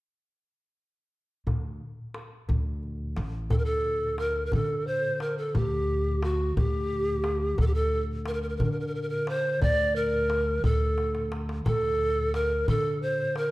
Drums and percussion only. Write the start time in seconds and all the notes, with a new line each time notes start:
1.47 darbuka dum
2.14 darbuka tek
2.49 darbuka dum
2.83 darbuka ka
3.17 darbuka tek
3.50 darbuka dum
4.18 darbuka tek
4.52 darbuka dum
4.87 darbuka ka
5.20 darbuka tek
5.38 darbuka ka
5.55 darbuka dum
6.23 darbuka tek
6.57 darbuka dum
6.91 darbuka ka
7.24 darbuka tek
7.41 darbuka ka
7.58 darbuka dum
8.26 darbuka tek
8.60 darbuka dum
8.94 darbuka ka
9.27 darbuka tek
9.45 darbuka ka
9.62 darbuka dum
9.79 darbuka ka
10.30 darbuka tek
10.64 darbuka dum
10.98 darbuka tek
11.15 darbuka ka
11.32 darbuka tek
11.49 darbuka ka
11.66 darbuka dum
12.34 darbuka tek
12.68 darbuka dum
13.02 darbuka ka
13.36 darbuka tek